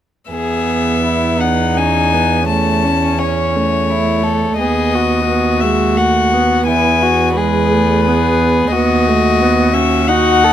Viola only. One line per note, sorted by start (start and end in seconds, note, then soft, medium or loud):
0.31 1.79 B3 soft
1.77 2.15 C#4 soft
2.13 2.49 B3 soft
2.49 2.86 A3 soft
2.84 3.20 C#4 soft
3.20 3.58 C#4 soft
3.57 4.61 A3 soft
4.59 5.28 B3 soft
5.29 5.64 B3 soft
5.62 5.98 G#3 soft
5.97 6.34 A3 soft
6.33 7.37 B3 soft
7.38 7.73 G#3 soft
7.72 8.09 A3 soft
8.08 8.73 B3 soft
8.74 9.10 B3 soft
9.08 9.42 A3 soft
9.41 9.74 B3 soft
9.75 10.10 C#4 soft
10.09 10.53 D#4 soft